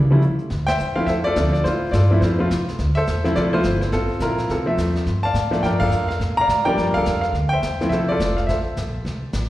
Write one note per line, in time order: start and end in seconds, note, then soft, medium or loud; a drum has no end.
0.00 0.23 C#3 medium
0.10 0.21 F3 medium
0.10 0.21 G3 medium
0.10 0.21 A3 medium
0.10 0.21 C#4 medium
0.10 0.22 E4 medium
0.22 closed hi-hat medium
0.39 closed hi-hat soft
0.50 0.78 D2 medium
0.50 brush sweep soft
0.50 snare soft
0.67 1.08 C5 medium
0.67 1.05 E5 medium
0.67 0.97 G5 loud
0.67 snare medium
0.67 ride medium
0.79 0.96 E2 medium
0.79 hi-hat pedal medium
0.96 1.06 F3 medium
0.96 1.07 A3 medium
0.96 1.07 C4 medium
0.96 1.07 E4 medium
0.96 1.06 F5 medium
0.96 muted upright bass stroke soft
1.07 1.35 F2 medium
1.07 1.25 A4 medium
1.07 1.62 C5 medium
1.07 1.23 E5 medium
1.07 brush sweep soft
1.07 snare soft
1.24 1.66 F4 medium
1.24 1.79 A4 medium
1.24 1.51 D5 loud
1.36 1.64 D2 medium
1.36 1.52 F3 medium
1.36 1.52 A3 medium
1.36 1.52 C4 medium
1.36 1.53 D4 medium
1.36 snare medium
1.36 hi-hat pedal soft
1.53 1.65 D5 medium
1.53 snare soft
1.64 1.92 A2 medium
1.64 2.11 E4 medium
1.64 1.93 F4 medium
1.64 1.94 C5 medium
1.64 brush sweep soft
1.64 snare soft
1.92 2.20 G2 medium
1.92 2.23 F4 medium
1.92 2.47 A4 medium
1.92 2.19 D5 medium
1.92 snare medium
1.92 hi-hat pedal medium
2.11 2.37 F3 medium
2.11 2.38 A3 medium
2.11 2.38 C4 medium
2.11 2.23 E4 medium
2.21 2.49 F2 medium
2.21 2.76 E4 soft
2.21 2.39 F4 soft
2.21 2.64 C5 medium
2.21 brush sweep soft
2.21 snare soft
2.39 2.49 F3 medium
2.39 2.49 A3 medium
2.39 2.49 C4 medium
2.39 2.50 F4 medium
2.51 2.78 C2 medium
2.51 snare medium
2.51 hi-hat pedal medium
2.68 snare soft
2.79 3.06 D2 medium
2.79 brush sweep soft
2.79 snare soft
2.95 3.36 A4 medium
2.95 3.50 C5 medium
2.95 3.32 E5 loud
3.07 3.35 E2 medium
3.07 snare medium
3.07 hi-hat pedal soft
3.24 3.51 F3 medium
3.24 3.51 A3 medium
3.24 3.51 C4 medium
3.24 3.52 E4 medium
3.24 snare soft
3.36 3.64 C2 medium
3.36 3.53 F4 medium
3.36 3.90 A4 medium
3.36 3.41 D5 medium
3.36 brush sweep soft
3.36 snare soft
3.53 3.63 F3 medium
3.53 3.63 A3 medium
3.53 3.64 C4 medium
3.53 4.07 E4 medium
3.53 3.64 F4 medium
3.53 3.80 C5 loud
3.63 3.92 G1 medium
3.63 snare medium
3.63 hi-hat pedal medium
3.81 3.92 C5 medium
3.81 snare soft
3.92 4.20 A1 medium
3.92 4.47 C4 medium
3.92 4.22 F4 medium
3.92 4.22 A4 medium
3.92 brush sweep soft
3.92 snare soft
4.20 4.49 A#1 medium
4.20 4.75 E4 medium
4.20 4.50 F4 medium
4.20 4.51 A#4 medium
4.20 snare medium
4.20 hi-hat pedal medium
4.38 snare soft
4.49 4.77 C2 medium
4.49 4.65 C4 soft
4.49 5.04 F4 soft
4.49 4.93 A4 medium
4.49 brush sweep soft
4.49 snare soft
4.66 5.04 F3 medium
4.66 5.04 A3 medium
4.66 5.04 C4 medium
4.66 5.05 E5 medium
4.77 5.06 E2 medium
4.77 snare medium
4.77 hi-hat pedal medium
4.96 snare soft
5.06 5.33 G2 medium
5.06 brush sweep soft
5.06 snare soft
5.23 5.64 D5 medium
5.23 5.78 F5 medium
5.23 5.61 A5 loud
5.34 5.62 A2 medium
5.34 snare medium
5.34 hi-hat pedal medium
5.51 5.89 F3 medium
5.51 5.90 A3 medium
5.51 5.90 A#3 medium
5.51 5.90 D4 medium
5.51 snare soft
5.63 5.90 G2 medium
5.63 5.81 A#4 medium
5.63 6.18 D5 medium
5.63 5.68 G5 medium
5.63 brush sweep soft
5.63 snare soft
5.80 6.35 A4 medium
5.80 6.35 A#4 medium
5.80 6.07 F5 loud
5.80 kick medium
5.80 crash medium
5.91 6.19 F2 medium
5.91 hi-hat pedal medium
6.09 6.19 F5 medium
6.09 snare soft
6.19 6.47 A#2 medium
6.19 brush sweep soft
6.19 snare soft
6.37 6.67 D5 medium
6.37 6.93 F5 medium
6.37 6.64 A#5 loud
6.48 6.76 A2 medium
6.48 snare medium
6.48 hi-hat pedal medium
6.65 7.04 F3 medium
6.65 7.04 G3 medium
6.65 7.04 A#3 medium
6.65 7.04 D4 medium
6.65 6.96 A#4 medium
6.65 7.21 D5 medium
6.65 6.95 G5 loud
6.78 6.87 G2 medium
6.78 brush sweep soft
6.78 snare soft
6.87 6.96 F2 medium
6.94 7.05 D2 medium
6.94 7.33 A4 medium
6.94 7.33 A#4 medium
6.94 7.20 F5 loud
7.06 7.32 F2 medium
7.06 snare medium
7.06 hi-hat pedal medium
7.21 7.33 F5 medium
7.21 snare soft
7.33 7.61 D2 medium
7.33 brush sweep soft
7.33 snare soft
7.49 7.88 E5 medium
7.49 7.77 G5 loud
7.54 7.92 C5 medium
7.62 7.90 E2 medium
7.62 snare medium
7.62 hi-hat pedal medium
7.81 8.18 F3 medium
7.81 8.18 A3 medium
7.81 8.19 C4 medium
7.81 8.19 E4 medium
7.81 snare soft
7.89 8.19 C2 medium
7.89 8.10 A4 medium
7.89 8.45 C5 medium
7.89 8.09 E5 medium
7.89 brush sweep soft
7.89 snare soft
8.08 8.63 F4 medium
8.08 8.48 A4 medium
8.08 8.35 D5 medium
8.19 8.47 F1 medium
8.19 snare medium
8.19 hi-hat pedal medium
8.37 8.42 F5 medium
8.37 snare soft
8.47 8.76 A1 medium
8.47 9.31 A4 soft
8.47 9.31 C5 medium
8.47 9.29 E5 medium
8.47 brush sweep medium
8.47 snare soft
8.77 9.04 A#1 medium
8.77 snare medium
8.77 hi-hat pedal medium
9.05 9.33 C2 medium
9.05 brush sweep soft
9.05 snare soft
9.33 9.49 A1 medium
9.33 snare medium
9.33 hi-hat pedal medium